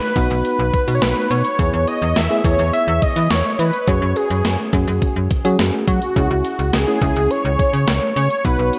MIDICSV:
0, 0, Header, 1, 5, 480
1, 0, Start_track
1, 0, Key_signature, 4, "minor"
1, 0, Tempo, 571429
1, 1336, Time_signature, 4, 2, 24, 8
1, 7382, End_track
2, 0, Start_track
2, 0, Title_t, "Analog synth lead"
2, 0, Program_c, 0, 81
2, 0, Note_on_c, 0, 71, 107
2, 791, Note_off_c, 0, 71, 0
2, 796, Note_on_c, 0, 73, 72
2, 855, Note_on_c, 0, 71, 98
2, 868, Note_off_c, 0, 73, 0
2, 1095, Note_on_c, 0, 73, 103
2, 1107, Note_off_c, 0, 71, 0
2, 1576, Note_on_c, 0, 75, 107
2, 1589, Note_off_c, 0, 73, 0
2, 1816, Note_on_c, 0, 76, 112
2, 1829, Note_off_c, 0, 75, 0
2, 2056, Note_on_c, 0, 73, 105
2, 2069, Note_off_c, 0, 76, 0
2, 2291, Note_off_c, 0, 73, 0
2, 2296, Note_on_c, 0, 76, 107
2, 2536, Note_on_c, 0, 75, 99
2, 2549, Note_off_c, 0, 76, 0
2, 2776, Note_on_c, 0, 73, 100
2, 2789, Note_off_c, 0, 75, 0
2, 3017, Note_on_c, 0, 71, 93
2, 3030, Note_off_c, 0, 73, 0
2, 3257, Note_on_c, 0, 73, 98
2, 3269, Note_off_c, 0, 71, 0
2, 3497, Note_on_c, 0, 68, 91
2, 3509, Note_off_c, 0, 73, 0
2, 3976, Note_off_c, 0, 68, 0
2, 4937, Note_on_c, 0, 66, 88
2, 5657, Note_on_c, 0, 68, 92
2, 5670, Note_off_c, 0, 66, 0
2, 6137, Note_on_c, 0, 73, 105
2, 6150, Note_off_c, 0, 68, 0
2, 6852, Note_off_c, 0, 73, 0
2, 6857, Note_on_c, 0, 73, 93
2, 7080, Note_off_c, 0, 73, 0
2, 7097, Note_on_c, 0, 71, 107
2, 7382, Note_off_c, 0, 71, 0
2, 7382, End_track
3, 0, Start_track
3, 0, Title_t, "FM electric piano"
3, 0, Program_c, 1, 5
3, 136, Note_on_c, 1, 59, 86
3, 136, Note_on_c, 1, 63, 77
3, 136, Note_on_c, 1, 66, 94
3, 627, Note_off_c, 1, 59, 0
3, 627, Note_off_c, 1, 63, 0
3, 627, Note_off_c, 1, 66, 0
3, 735, Note_on_c, 1, 63, 66
3, 735, Note_on_c, 1, 66, 78
3, 736, Note_on_c, 1, 59, 71
3, 1226, Note_off_c, 1, 63, 0
3, 1226, Note_off_c, 1, 66, 0
3, 1227, Note_off_c, 1, 59, 0
3, 1336, Note_on_c, 1, 59, 69
3, 1336, Note_on_c, 1, 64, 63
3, 1336, Note_on_c, 1, 68, 75
3, 1827, Note_off_c, 1, 59, 0
3, 1827, Note_off_c, 1, 64, 0
3, 1827, Note_off_c, 1, 68, 0
3, 1935, Note_on_c, 1, 59, 72
3, 1935, Note_on_c, 1, 64, 65
3, 1936, Note_on_c, 1, 68, 80
3, 2034, Note_off_c, 1, 59, 0
3, 2034, Note_off_c, 1, 64, 0
3, 2034, Note_off_c, 1, 68, 0
3, 2056, Note_on_c, 1, 59, 71
3, 2056, Note_on_c, 1, 64, 66
3, 2056, Note_on_c, 1, 68, 78
3, 2841, Note_off_c, 1, 59, 0
3, 2841, Note_off_c, 1, 64, 0
3, 2841, Note_off_c, 1, 68, 0
3, 3255, Note_on_c, 1, 66, 65
3, 3256, Note_on_c, 1, 61, 71
3, 3256, Note_on_c, 1, 68, 75
3, 3845, Note_off_c, 1, 61, 0
3, 3845, Note_off_c, 1, 66, 0
3, 3845, Note_off_c, 1, 68, 0
3, 3976, Note_on_c, 1, 61, 71
3, 3976, Note_on_c, 1, 66, 62
3, 3976, Note_on_c, 1, 68, 78
3, 4467, Note_off_c, 1, 61, 0
3, 4467, Note_off_c, 1, 66, 0
3, 4467, Note_off_c, 1, 68, 0
3, 4576, Note_on_c, 1, 61, 80
3, 4576, Note_on_c, 1, 66, 73
3, 4576, Note_on_c, 1, 68, 91
3, 5067, Note_off_c, 1, 61, 0
3, 5067, Note_off_c, 1, 66, 0
3, 5067, Note_off_c, 1, 68, 0
3, 5176, Note_on_c, 1, 61, 72
3, 5176, Note_on_c, 1, 64, 62
3, 5176, Note_on_c, 1, 68, 78
3, 5667, Note_off_c, 1, 61, 0
3, 5667, Note_off_c, 1, 64, 0
3, 5667, Note_off_c, 1, 68, 0
3, 5776, Note_on_c, 1, 61, 69
3, 5776, Note_on_c, 1, 64, 64
3, 5776, Note_on_c, 1, 68, 79
3, 5874, Note_off_c, 1, 61, 0
3, 5874, Note_off_c, 1, 64, 0
3, 5874, Note_off_c, 1, 68, 0
3, 5896, Note_on_c, 1, 61, 69
3, 5896, Note_on_c, 1, 64, 66
3, 5896, Note_on_c, 1, 68, 80
3, 6681, Note_off_c, 1, 64, 0
3, 6682, Note_off_c, 1, 61, 0
3, 6682, Note_off_c, 1, 68, 0
3, 7096, Note_on_c, 1, 59, 69
3, 7096, Note_on_c, 1, 63, 64
3, 7096, Note_on_c, 1, 66, 76
3, 7382, Note_off_c, 1, 59, 0
3, 7382, Note_off_c, 1, 63, 0
3, 7382, Note_off_c, 1, 66, 0
3, 7382, End_track
4, 0, Start_track
4, 0, Title_t, "FM bass"
4, 0, Program_c, 2, 39
4, 133, Note_on_c, 2, 35, 100
4, 237, Note_off_c, 2, 35, 0
4, 257, Note_on_c, 2, 35, 100
4, 359, Note_off_c, 2, 35, 0
4, 496, Note_on_c, 2, 35, 99
4, 599, Note_off_c, 2, 35, 0
4, 736, Note_on_c, 2, 47, 89
4, 838, Note_off_c, 2, 47, 0
4, 856, Note_on_c, 2, 35, 106
4, 959, Note_off_c, 2, 35, 0
4, 1096, Note_on_c, 2, 47, 100
4, 1199, Note_off_c, 2, 47, 0
4, 1336, Note_on_c, 2, 40, 99
4, 1439, Note_off_c, 2, 40, 0
4, 1456, Note_on_c, 2, 40, 98
4, 1558, Note_off_c, 2, 40, 0
4, 1696, Note_on_c, 2, 40, 97
4, 1798, Note_off_c, 2, 40, 0
4, 1816, Note_on_c, 2, 40, 106
4, 1918, Note_off_c, 2, 40, 0
4, 2053, Note_on_c, 2, 40, 95
4, 2157, Note_off_c, 2, 40, 0
4, 2176, Note_on_c, 2, 40, 96
4, 2278, Note_off_c, 2, 40, 0
4, 2416, Note_on_c, 2, 40, 101
4, 2518, Note_off_c, 2, 40, 0
4, 2655, Note_on_c, 2, 52, 92
4, 2758, Note_off_c, 2, 52, 0
4, 2775, Note_on_c, 2, 40, 99
4, 2878, Note_off_c, 2, 40, 0
4, 3016, Note_on_c, 2, 52, 98
4, 3118, Note_off_c, 2, 52, 0
4, 3256, Note_on_c, 2, 42, 106
4, 3358, Note_off_c, 2, 42, 0
4, 3375, Note_on_c, 2, 42, 95
4, 3478, Note_off_c, 2, 42, 0
4, 3615, Note_on_c, 2, 42, 90
4, 3718, Note_off_c, 2, 42, 0
4, 3736, Note_on_c, 2, 42, 97
4, 3838, Note_off_c, 2, 42, 0
4, 3973, Note_on_c, 2, 42, 100
4, 4077, Note_off_c, 2, 42, 0
4, 4096, Note_on_c, 2, 42, 101
4, 4198, Note_off_c, 2, 42, 0
4, 4336, Note_on_c, 2, 42, 88
4, 4438, Note_off_c, 2, 42, 0
4, 4576, Note_on_c, 2, 54, 99
4, 4678, Note_off_c, 2, 54, 0
4, 4696, Note_on_c, 2, 42, 101
4, 4798, Note_off_c, 2, 42, 0
4, 4936, Note_on_c, 2, 54, 94
4, 5038, Note_off_c, 2, 54, 0
4, 5177, Note_on_c, 2, 37, 105
4, 5279, Note_off_c, 2, 37, 0
4, 5296, Note_on_c, 2, 37, 93
4, 5398, Note_off_c, 2, 37, 0
4, 5536, Note_on_c, 2, 37, 86
4, 5638, Note_off_c, 2, 37, 0
4, 5656, Note_on_c, 2, 37, 95
4, 5758, Note_off_c, 2, 37, 0
4, 5893, Note_on_c, 2, 37, 98
4, 5997, Note_off_c, 2, 37, 0
4, 6016, Note_on_c, 2, 37, 92
4, 6118, Note_off_c, 2, 37, 0
4, 6256, Note_on_c, 2, 37, 98
4, 6358, Note_off_c, 2, 37, 0
4, 6496, Note_on_c, 2, 49, 89
4, 6598, Note_off_c, 2, 49, 0
4, 6616, Note_on_c, 2, 37, 104
4, 6718, Note_off_c, 2, 37, 0
4, 6856, Note_on_c, 2, 49, 96
4, 6958, Note_off_c, 2, 49, 0
4, 7096, Note_on_c, 2, 35, 103
4, 7199, Note_off_c, 2, 35, 0
4, 7216, Note_on_c, 2, 35, 94
4, 7318, Note_off_c, 2, 35, 0
4, 7382, End_track
5, 0, Start_track
5, 0, Title_t, "Drums"
5, 133, Note_on_c, 9, 36, 93
5, 137, Note_on_c, 9, 42, 72
5, 217, Note_off_c, 9, 36, 0
5, 221, Note_off_c, 9, 42, 0
5, 255, Note_on_c, 9, 42, 47
5, 339, Note_off_c, 9, 42, 0
5, 377, Note_on_c, 9, 42, 66
5, 461, Note_off_c, 9, 42, 0
5, 617, Note_on_c, 9, 42, 69
5, 618, Note_on_c, 9, 36, 89
5, 701, Note_off_c, 9, 42, 0
5, 702, Note_off_c, 9, 36, 0
5, 738, Note_on_c, 9, 42, 60
5, 822, Note_off_c, 9, 42, 0
5, 855, Note_on_c, 9, 42, 69
5, 857, Note_on_c, 9, 38, 112
5, 939, Note_off_c, 9, 42, 0
5, 941, Note_off_c, 9, 38, 0
5, 1099, Note_on_c, 9, 42, 76
5, 1183, Note_off_c, 9, 42, 0
5, 1215, Note_on_c, 9, 42, 44
5, 1299, Note_off_c, 9, 42, 0
5, 1335, Note_on_c, 9, 42, 73
5, 1336, Note_on_c, 9, 36, 111
5, 1419, Note_off_c, 9, 42, 0
5, 1420, Note_off_c, 9, 36, 0
5, 1575, Note_on_c, 9, 42, 68
5, 1659, Note_off_c, 9, 42, 0
5, 1696, Note_on_c, 9, 42, 46
5, 1780, Note_off_c, 9, 42, 0
5, 1816, Note_on_c, 9, 38, 107
5, 1817, Note_on_c, 9, 42, 74
5, 1900, Note_off_c, 9, 38, 0
5, 1901, Note_off_c, 9, 42, 0
5, 2053, Note_on_c, 9, 36, 94
5, 2057, Note_on_c, 9, 42, 72
5, 2137, Note_off_c, 9, 36, 0
5, 2141, Note_off_c, 9, 42, 0
5, 2175, Note_on_c, 9, 42, 48
5, 2259, Note_off_c, 9, 42, 0
5, 2297, Note_on_c, 9, 42, 68
5, 2381, Note_off_c, 9, 42, 0
5, 2537, Note_on_c, 9, 42, 68
5, 2538, Note_on_c, 9, 36, 90
5, 2621, Note_off_c, 9, 42, 0
5, 2622, Note_off_c, 9, 36, 0
5, 2658, Note_on_c, 9, 42, 59
5, 2742, Note_off_c, 9, 42, 0
5, 2775, Note_on_c, 9, 42, 70
5, 2777, Note_on_c, 9, 38, 112
5, 2859, Note_off_c, 9, 42, 0
5, 2861, Note_off_c, 9, 38, 0
5, 3018, Note_on_c, 9, 42, 73
5, 3102, Note_off_c, 9, 42, 0
5, 3135, Note_on_c, 9, 42, 44
5, 3219, Note_off_c, 9, 42, 0
5, 3255, Note_on_c, 9, 42, 74
5, 3256, Note_on_c, 9, 36, 108
5, 3339, Note_off_c, 9, 42, 0
5, 3340, Note_off_c, 9, 36, 0
5, 3495, Note_on_c, 9, 42, 67
5, 3579, Note_off_c, 9, 42, 0
5, 3617, Note_on_c, 9, 42, 47
5, 3701, Note_off_c, 9, 42, 0
5, 3737, Note_on_c, 9, 38, 105
5, 3738, Note_on_c, 9, 42, 72
5, 3821, Note_off_c, 9, 38, 0
5, 3822, Note_off_c, 9, 42, 0
5, 3974, Note_on_c, 9, 36, 90
5, 3977, Note_on_c, 9, 42, 73
5, 4058, Note_off_c, 9, 36, 0
5, 4061, Note_off_c, 9, 42, 0
5, 4095, Note_on_c, 9, 42, 47
5, 4179, Note_off_c, 9, 42, 0
5, 4216, Note_on_c, 9, 36, 101
5, 4218, Note_on_c, 9, 42, 69
5, 4300, Note_off_c, 9, 36, 0
5, 4302, Note_off_c, 9, 42, 0
5, 4458, Note_on_c, 9, 42, 67
5, 4459, Note_on_c, 9, 36, 87
5, 4542, Note_off_c, 9, 42, 0
5, 4543, Note_off_c, 9, 36, 0
5, 4578, Note_on_c, 9, 42, 59
5, 4662, Note_off_c, 9, 42, 0
5, 4696, Note_on_c, 9, 42, 68
5, 4697, Note_on_c, 9, 38, 114
5, 4780, Note_off_c, 9, 42, 0
5, 4781, Note_off_c, 9, 38, 0
5, 4936, Note_on_c, 9, 36, 94
5, 4939, Note_on_c, 9, 42, 76
5, 5020, Note_off_c, 9, 36, 0
5, 5023, Note_off_c, 9, 42, 0
5, 5055, Note_on_c, 9, 42, 42
5, 5139, Note_off_c, 9, 42, 0
5, 5176, Note_on_c, 9, 42, 72
5, 5177, Note_on_c, 9, 36, 111
5, 5260, Note_off_c, 9, 42, 0
5, 5261, Note_off_c, 9, 36, 0
5, 5415, Note_on_c, 9, 42, 68
5, 5499, Note_off_c, 9, 42, 0
5, 5537, Note_on_c, 9, 42, 44
5, 5621, Note_off_c, 9, 42, 0
5, 5656, Note_on_c, 9, 38, 103
5, 5657, Note_on_c, 9, 42, 77
5, 5740, Note_off_c, 9, 38, 0
5, 5741, Note_off_c, 9, 42, 0
5, 5893, Note_on_c, 9, 36, 88
5, 5897, Note_on_c, 9, 42, 73
5, 5977, Note_off_c, 9, 36, 0
5, 5981, Note_off_c, 9, 42, 0
5, 6014, Note_on_c, 9, 42, 46
5, 6098, Note_off_c, 9, 42, 0
5, 6137, Note_on_c, 9, 42, 68
5, 6221, Note_off_c, 9, 42, 0
5, 6377, Note_on_c, 9, 42, 68
5, 6378, Note_on_c, 9, 36, 87
5, 6461, Note_off_c, 9, 42, 0
5, 6462, Note_off_c, 9, 36, 0
5, 6497, Note_on_c, 9, 42, 57
5, 6581, Note_off_c, 9, 42, 0
5, 6615, Note_on_c, 9, 42, 70
5, 6616, Note_on_c, 9, 38, 113
5, 6699, Note_off_c, 9, 42, 0
5, 6700, Note_off_c, 9, 38, 0
5, 6858, Note_on_c, 9, 42, 77
5, 6942, Note_off_c, 9, 42, 0
5, 6975, Note_on_c, 9, 42, 42
5, 7059, Note_off_c, 9, 42, 0
5, 7095, Note_on_c, 9, 42, 72
5, 7096, Note_on_c, 9, 36, 113
5, 7179, Note_off_c, 9, 42, 0
5, 7180, Note_off_c, 9, 36, 0
5, 7335, Note_on_c, 9, 42, 69
5, 7382, Note_off_c, 9, 42, 0
5, 7382, End_track
0, 0, End_of_file